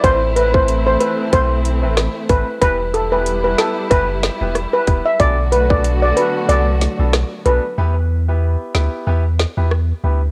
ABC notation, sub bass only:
X:1
M:4/4
L:1/16
Q:"Swing 16ths" 1/4=93
K:Em
V:1 name="Sub bass" clef=bass
A,,,6 z2 B,,,3 A,,,2 z A,,, z | E,,,6 z2 F,,,3 E,,,2 z E,,, z | B,,,6 z2 C,,3 B,,,2 z B,,, z | E,,4- E,, z D,, z E,,3 E,,3 D,,2 |]